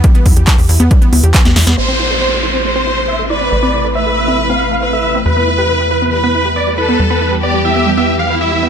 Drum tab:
HH |xxoxxooxxxoxxxox|----------------|----------------|----------------|
CP |----x-------x---|----------------|----------------|----------------|
SD |-------------ooo|----------------|----------------|----------------|
CG |-------o--o--o-o|----------------|----------------|----------------|
BD |o-o-o---o---o---|----------------|----------------|----------------|

HH |----------------|
CP |----------------|
SD |----------------|
CG |----------------|
BD |----------------|